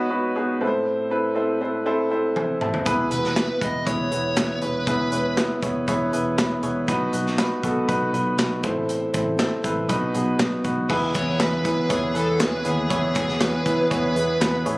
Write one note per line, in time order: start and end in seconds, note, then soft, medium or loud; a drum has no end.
0.00 0.63 B2 medium
0.00 0.10 B3 loud
0.00 0.10 D#4 medium
0.00 0.10 F#4 medium
0.00 0.11 B4 loud
0.00 0.63 C#5 medium
0.10 0.34 B3 medium
0.10 0.34 D#4 medium
0.10 0.34 F#4 medium
0.10 0.35 B4 medium
0.36 0.59 B3 medium
0.36 0.59 D#4 medium
0.36 0.60 F#4 medium
0.36 0.60 G#4 medium
0.61 1.32 A2 medium
0.61 1.08 C4 medium
0.61 1.08 E4 medium
0.61 1.08 A4 medium
0.61 0.67 B4 medium
0.67 1.12 C5 medium
1.11 1.33 C4 medium
1.11 1.34 E4 medium
1.11 1.34 A4 medium
1.11 1.35 B4 medium
1.35 1.59 C4 medium
1.35 1.59 E4 medium
1.35 1.60 A4 medium
1.35 1.60 C5 medium
1.61 1.84 C4 medium
1.61 1.85 E4 medium
1.61 1.85 A4 medium
1.61 1.85 C5 medium
1.86 2.09 C4 medium
1.86 2.09 E4 medium
1.86 2.09 A4 medium
1.86 2.10 C5 medium
2.11 2.35 C4 medium
2.11 2.35 E4 medium
2.11 2.35 A4 medium
2.11 2.35 C5 medium
2.11 2.35 E5 medium
2.36 2.60 G#5 medium
2.36 high tom soft
2.61 3.09 E5 medium
2.61 2.85 A5 medium
2.61 mid tom medium
2.74 floor tom medium
2.86 3.07 E1 medium
2.86 3.58 E3 medium
2.86 3.09 B3 loud
2.86 3.09 E4 medium
2.86 3.09 G#4 medium
2.86 3.10 B4 loud
2.86 kick medium
2.86 closed hi-hat medium
3.10 3.42 E1 medium
3.10 3.34 B3 medium
3.10 3.34 E4 medium
3.10 3.34 G#4 medium
3.10 3.34 B4 medium
3.10 3.63 B4 medium
3.10 closed hi-hat medium
3.24 snare soft
3.35 3.59 B3 medium
3.35 3.60 E4 medium
3.35 3.60 G#4 medium
3.35 3.60 B4 medium
3.35 snare medium
3.35 clap medium
3.35 closed hi-hat medium
3.60 3.82 E1 medium
3.60 3.84 B3 medium
3.60 3.85 E4 medium
3.60 3.85 G#4 medium
3.60 3.85 B4 medium
3.60 3.86 D#5 medium
3.60 kick medium
3.60 closed hi-hat medium
3.86 4.07 E1 medium
3.86 4.10 B3 medium
3.86 4.10 E4 medium
3.86 4.10 G#4 medium
3.86 4.58 C#5 medium
3.86 4.11 C#5 medium
3.86 kick medium
3.86 closed hi-hat medium
4.11 4.33 E1 medium
4.11 4.35 B3 medium
4.11 4.35 E4 medium
4.11 4.35 G#4 medium
4.11 4.36 B4 medium
4.11 closed hi-hat medium
4.36 4.58 E1 medium
4.36 4.60 B3 medium
4.36 4.60 E4 medium
4.36 4.60 G#4 medium
4.36 4.61 B4 medium
4.36 snare loud
4.36 clap medium
4.36 closed hi-hat medium
4.62 4.83 E1 medium
4.62 4.85 B3 medium
4.62 4.86 E4 medium
4.62 4.86 G#4 medium
4.62 5.34 B4 medium
4.62 4.86 C#5 medium
4.62 closed hi-hat medium
4.87 5.08 E1 medium
4.87 5.59 E3 medium
4.87 5.10 B3 medium
4.87 5.11 E4 medium
4.87 5.11 G#4 medium
4.87 5.11 B4 medium
4.87 kick medium
4.87 closed hi-hat medium
5.12 5.43 E1 medium
5.12 5.35 B3 medium
5.12 5.36 E4 medium
5.12 5.36 G#4 medium
5.12 5.36 C#5 medium
5.12 closed hi-hat medium
5.37 5.61 B3 medium
5.37 5.61 E4 medium
5.37 5.61 G#4 medium
5.37 5.61 B4 medium
5.37 snare medium
5.37 clap medium
5.37 closed hi-hat medium
5.62 5.83 E1 medium
5.62 5.86 B3 medium
5.62 5.86 E4 medium
5.62 5.86 G#4 medium
5.62 5.86 C#5 medium
5.62 kick medium
5.62 closed hi-hat medium
5.88 6.08 E1 medium
5.88 6.11 B3 medium
5.88 6.11 E4 medium
5.88 6.11 G#4 medium
5.88 6.12 C#5 loud
5.88 kick medium
5.88 closed hi-hat medium
6.12 6.34 E1 medium
6.12 6.36 B3 medium
6.12 6.36 E4 medium
6.12 6.36 G#4 medium
6.12 6.37 B4 medium
6.12 closed hi-hat medium
6.37 6.59 E1 medium
6.37 6.61 B3 medium
6.37 6.61 E4 medium
6.37 6.62 G#4 medium
6.37 6.62 B4 medium
6.37 snare loud
6.37 clap medium
6.37 closed hi-hat medium
6.63 6.84 E1 medium
6.63 6.87 B3 medium
6.63 6.87 E4 medium
6.63 6.87 G#4 medium
6.63 6.87 C#5 medium
6.63 closed hi-hat medium
6.88 7.09 B1 medium
6.88 7.59 B2 medium
6.88 7.11 B3 medium
6.88 7.12 D#4 medium
6.88 7.12 F#4 medium
6.88 7.12 B4 loud
6.88 kick loud
6.88 closed hi-hat medium
7.13 7.44 B1 medium
7.13 7.37 B3 medium
7.13 7.37 D#4 medium
7.13 7.37 F#4 medium
7.13 7.37 B4 medium
7.13 closed hi-hat medium
7.27 snare soft
7.38 7.62 B3 medium
7.38 7.62 D#4 medium
7.38 7.62 F#4 medium
7.38 7.63 B4 medium
7.38 snare medium
7.38 clap medium
7.38 closed hi-hat medium
7.63 7.84 B1 medium
7.63 7.86 B3 medium
7.63 7.87 D#4 medium
7.63 7.87 F#4 medium
7.63 7.88 A4 medium
7.63 kick medium
7.63 closed hi-hat medium
7.88 8.09 B1 medium
7.88 8.12 B3 medium
7.88 8.12 D#4 medium
7.88 8.12 F#4 medium
7.88 8.12 B4 loud
7.88 kick medium
7.88 closed hi-hat medium
8.13 8.34 B1 medium
8.13 8.36 B3 medium
8.13 8.37 D#4 medium
8.13 8.37 F#4 medium
8.13 8.37 B4 medium
8.13 closed hi-hat medium
8.38 8.64 B1 medium
8.38 8.62 B3 medium
8.38 8.62 D#4 medium
8.38 8.62 F#4 medium
8.38 8.63 B4 medium
8.38 snare loud
8.38 clap medium
8.38 closed hi-hat medium
8.63 9.05 A1 medium
8.63 9.35 A2 medium
8.63 9.11 C4 medium
8.63 9.11 E4 medium
8.63 9.11 A4 medium
8.63 9.12 C5 medium
8.63 kick medium
8.63 closed hi-hat medium
8.89 closed hi-hat medium
9.13 9.45 A1 medium
9.13 9.37 C4 medium
9.13 9.37 E4 medium
9.13 9.37 A4 medium
9.13 9.38 C5 medium
9.13 kick medium
9.13 closed hi-hat medium
9.38 9.62 C4 medium
9.38 9.63 E4 medium
9.38 9.63 A4 medium
9.38 9.63 C5 medium
9.38 snare medium
9.38 clap medium
9.38 closed hi-hat medium
9.64 9.85 A1 medium
9.64 9.88 C4 medium
9.64 9.88 E4 medium
9.64 9.88 A4 medium
9.64 9.88 B4 medium
9.64 kick medium
9.64 closed hi-hat medium
9.89 10.10 B1 medium
9.89 10.61 B2 medium
9.89 10.13 B3 medium
9.89 10.13 D#4 medium
9.89 10.13 F#4 medium
9.89 10.13 B4 loud
9.89 kick medium
9.89 closed hi-hat medium
10.14 10.35 B1 medium
10.14 10.37 B3 medium
10.14 10.38 D#4 medium
10.14 10.38 F#4 medium
10.14 10.38 G#4 medium
10.14 closed hi-hat medium
10.39 10.60 B1 medium
10.39 10.63 B3 medium
10.39 10.63 D#4 medium
10.39 10.63 F#4 medium
10.39 10.63 B4 medium
10.39 snare loud
10.39 clap medium
10.39 closed hi-hat medium
10.64 10.85 B1 medium
10.64 10.88 B3 medium
10.64 10.88 D#4 medium
10.64 10.88 F#4 medium
10.64 10.89 B4 medium
10.64 kick medium
10.64 closed hi-hat medium
10.89 11.10 E2 medium
10.89 11.61 E3 medium
10.89 14.78 E3 medium
10.89 11.12 B3 loud
10.89 14.78 B3 medium
10.89 11.12 E4 medium
10.89 14.78 G#4 medium
10.89 11.13 G#4 loud
10.89 11.14 B4 loud
10.89 kick medium
10.89 crash medium
11.14 11.36 E2 medium
11.14 11.37 B3 medium
11.14 11.37 E4 medium
11.14 11.38 G#4 medium
11.14 11.38 C#5 medium
11.14 11.41 C#5 medium
11.14 kick medium
11.14 closed hi-hat medium
11.39 11.61 E2 medium
11.39 11.62 B3 medium
11.39 11.62 E4 medium
11.39 11.63 G#4 medium
11.39 11.63 B4 medium
11.39 11.65 B4 medium
11.39 snare loud
11.39 clap medium
11.39 closed hi-hat medium
11.64 11.86 E3 medium
11.64 11.87 B3 medium
11.64 11.88 E4 medium
11.64 11.88 G#4 medium
11.64 11.89 B4 medium
11.64 11.91 B4 medium
11.64 kick medium
11.64 closed hi-hat medium
11.89 12.11 E2 medium
11.89 12.12 B3 medium
11.89 12.13 E4 medium
11.89 12.13 G#4 medium
11.89 12.16 G#4 medium
11.89 12.14 C#5 medium
11.89 kick medium
11.89 closed hi-hat medium
12.14 12.36 E2 medium
12.14 12.37 B3 medium
12.14 12.38 E4 medium
12.14 12.38 G#4 medium
12.14 12.42 A4 medium
12.14 12.39 B4 medium
12.14 closed hi-hat medium
12.39 12.61 E2 medium
12.39 12.63 B3 medium
12.39 12.63 E4 medium
12.39 12.63 G#4 medium
12.39 12.67 B4 medium
12.39 12.63 C#5 medium
12.39 snare loud
12.39 clap medium
12.39 closed hi-hat medium
12.64 12.86 D#2 medium
12.64 12.88 B3 medium
12.64 12.88 E4 medium
12.64 12.89 G#4 medium
12.64 12.90 G#4 medium
12.64 12.89 C#5 medium
12.64 closed hi-hat medium
12.90 13.11 E2 medium
12.90 13.62 E3 medium
12.90 13.13 B3 medium
12.90 13.13 E4 medium
12.90 13.14 G#4 medium
12.90 13.14 C#5 loud
12.90 kick loud
12.90 closed hi-hat medium
13.15 13.36 E2 medium
13.15 13.38 B3 medium
13.15 13.39 E4 medium
13.15 13.39 G#4 medium
13.15 13.42 G#4 medium
13.15 13.39 C#5 medium
13.15 kick medium
13.15 closed hi-hat medium
13.29 snare soft
13.40 13.61 E2 medium
13.40 13.63 B3 medium
13.40 13.64 E4 medium
13.40 13.64 G#4 medium
13.40 13.87 B4 medium
13.40 13.65 C#5 medium
13.40 snare medium
13.40 clap medium
13.40 closed hi-hat medium
13.65 13.87 E3 medium
13.65 13.88 B3 medium
13.65 13.89 E4 medium
13.65 13.89 G#4 medium
13.65 13.89 B4 medium
13.65 kick medium
13.65 closed hi-hat medium
13.90 14.12 E2 medium
13.90 14.14 B3 medium
13.90 14.14 E4 medium
13.90 14.14 G#4 medium
13.90 14.62 B4 medium
13.90 14.15 C#5 medium
13.90 kick medium
13.90 closed hi-hat medium
14.15 14.36 E2 medium
14.15 14.39 B3 medium
14.15 14.39 E4 medium
14.15 14.39 G#4 medium
14.15 14.39 B4 medium
14.15 closed hi-hat medium
14.40 14.62 E2 medium
14.40 14.64 B3 medium
14.40 14.64 E4 medium
14.40 14.64 G#4 medium
14.40 14.65 B4 medium
14.40 snare loud
14.40 clap medium
14.40 closed hi-hat medium
14.65 14.78 A1 medium
14.65 14.78 B3 medium
14.65 14.78 E4 medium
14.65 14.78 G#4 medium
14.65 14.78 C#5 medium
14.65 closed hi-hat medium